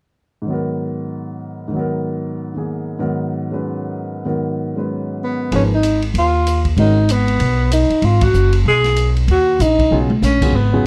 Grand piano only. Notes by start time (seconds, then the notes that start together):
0.42 G#2 D#3
0.48 F#3 B3
0.53 A#4
1.68 G#2 D#3
1.74 F#3 B3
1.79 A#4
2.55 D#3 A#3 G#4
2.99 G#2 D#3 F#3 B3 A#4
3.51 F#3 G#3 C#4 B4
4.25 G#2 D#3 F#3 B3 A#4
4.76 F#3 G#3 C#4 B4
5.52 F3 A#3 D#4 G#4 B4
6.78 D#3 G#3 C#4 F#4 A#4
9.91 C#3 F#3 B3 F4 G#4
10.42 C#3 F#3 B3 F4 G#4
10.73 C#3 F#3 B3 F4 G#4